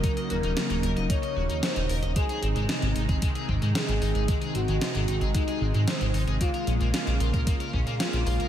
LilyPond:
<<
  \new Staff \with { instrumentName = "Analog synth lead" } { \time 4/4 \key aes \mixolydian \tempo 4 = 113 bes'8 bes'4. des''4 c''8 r8 | aes'8 r2 r8 aes'4~ | aes'8 ges'4. ees'8 r8 c'8 r8 | f'8 r2 r8 f'4 | }
  \new Staff \with { instrumentName = "Overdriven electric guitar" } { \time 4/4 \key aes \mixolydian ees'16 ees''16 ges'16 ees'16 ges'16 ees'16 bes'16 ees''16 ees'16 ees''16 ges'16 ees'16 ges'16 ees'16 bes'16 ees''16 | aes16 aes'16 c'16 aes16 c'16 aes16 ees'16 aes'16 aes16 aes'16 c'16 aes16 c'16 aes16 ees'16 aes'16 | aes16 aes'16 c'16 aes16 c'16 aes16 ees'16 aes'16 aes16 aes'16 c'16 aes16 c'16 aes16 ees'16 aes'16 | bes16 bes'16 des'16 bes16 des'16 bes16 f'16 bes'16 bes16 bes'16 des'16 bes16 des'16 bes16 f'16 bes'16 | }
  \new Staff \with { instrumentName = "Analog synth pad" } { \clef bass \time 4/4 \key aes \mixolydian << { ees'1~ | ees'1~ | ees'1 | f'1 | } \\ { <des ges bes>1 | <c ees aes>1~ | <c ees aes>1 | <des bes>1 | } >> }
  \new Staff \with { instrumentName = "Analog synth bass" } { \clef bass \time 4/4 \key aes \mixolydian r8 ees,,16 ees,,16 r16 ees,,16 ees,,16 ees,,16 r8 ees,,16 ees,16 r16 ees,,16 ees,,16 ees,,16 | r8 aes,,16 aes,,16 r16 aes,,16 aes,,16 aes,,16 r8 aes,,16 aes,16 r16 aes,,16 aes,,16 aes,,16 | r8 aes,,16 aes,,16 r16 aes,,16 aes,,16 aes,,16 r8 aes,,16 aes,16 r16 aes,,16 aes,,16 aes,,16 | r8 bes,,16 bes,,16 r16 bes,,16 bes,,16 bes,,16 r8 bes,,16 bes,16 r16 bes,,16 bes,,16 bes,,16 | }
  \new DrumStaff \with { instrumentName = "Drums" } \drummode { \time 4/4 <hh bd>16 hh16 hh16 hh16 <hh sn>16 hh16 hh16 hh16 <hh bd>16 hh8 hh16 <hh sn>16 hh16 hho16 hh16 | <hh bd>16 hh16 hh16 hh16 <hh sn>16 hh16 hh16 <hh bd>16 <hh bd>16 hh16 bd16 hh16 <hh sn>16 hh16 hho16 hh16 | <hh bd>16 hh16 hh16 hh16 <hh sn>16 hh16 hh16 hh16 <hh bd>16 hh8 hh16 <hh sn>16 hh16 hho16 hh16 | <hh bd>16 hh16 hh16 hh16 <hh sn>16 hh16 hh16 <hh bd>16 <hh bd>16 hh16 bd16 hh16 <hh sn>16 hh16 hho16 hh16 | }
>>